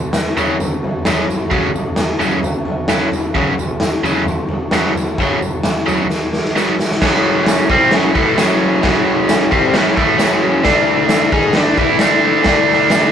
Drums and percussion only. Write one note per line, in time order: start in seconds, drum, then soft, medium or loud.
0.13 snare loud
0.13 floor tom medium
0.13 tambourine medium
0.37 floor tom medium
0.37 tambourine medium
0.60 floor tom medium
0.60 tambourine medium
0.84 floor tom medium
1.05 snare loud
1.05 floor tom medium
1.05 tambourine medium
1.28 floor tom medium
1.28 tambourine medium
1.51 kick loud
1.51 floor tom medium
1.74 floor tom medium
1.74 tambourine medium
1.96 snare loud
1.96 floor tom medium
1.96 tambourine medium
2.20 floor tom medium
2.20 tambourine medium
2.43 floor tom medium
2.43 tambourine medium
2.65 floor tom medium
2.88 snare loud
2.88 floor tom medium
2.88 tambourine medium
3.12 floor tom medium
3.12 tambourine medium
3.35 kick loud
3.35 floor tom medium
3.58 floor tom medium
3.58 tambourine medium
3.80 snare loud
3.80 floor tom medium
3.80 tambourine medium
4.03 floor tom medium
4.03 tambourine medium
4.25 floor tom medium
4.25 tambourine medium
4.49 floor tom medium
4.71 snare loud
4.71 floor tom medium
4.71 tambourine medium
4.95 floor tom medium
4.95 tambourine medium
5.18 kick loud
5.18 floor tom medium
5.18 tambourine soft
5.41 floor tom medium
5.41 tambourine medium
5.63 snare loud
5.63 floor tom medium
5.63 tambourine medium
5.88 floor tom medium
5.88 tambourine medium
6.10 snare medium
6.10 tambourine medium
6.33 snare medium
6.33 tambourine soft
6.45 snare medium
6.56 snare medium
6.56 tambourine medium
6.79 snare medium
6.79 tambourine medium
6.91 snare medium
7.02 kick loud
7.02 snare loud
7.02 crash loud
7.02 crash medium
7.46 snare loud
7.46 tambourine loud
7.46 crash medium
7.70 kick loud
7.91 snare loud
7.91 crash medium
8.15 kick loud
8.38 snare loud
8.38 tambourine loud
8.38 crash medium
8.83 kick loud
8.83 snare loud
8.83 crash medium
9.29 snare loud
9.29 tambourine loud
9.29 crash medium
9.52 kick loud
9.74 snare loud
9.74 crash medium
9.97 kick loud
10.20 snare loud
10.20 tambourine loud
10.20 crash medium
10.65 kick loud
10.65 snare loud
10.65 crash medium
11.09 snare loud
11.09 tambourine loud
11.09 crash medium
11.32 kick loud
11.53 snare loud
11.53 crash medium
11.78 kick loud
11.99 snare loud
11.99 tambourine loud
11.99 crash medium
12.44 kick loud
12.44 snare loud
12.44 crash medium
12.90 snare loud
12.90 tambourine loud
12.90 crash medium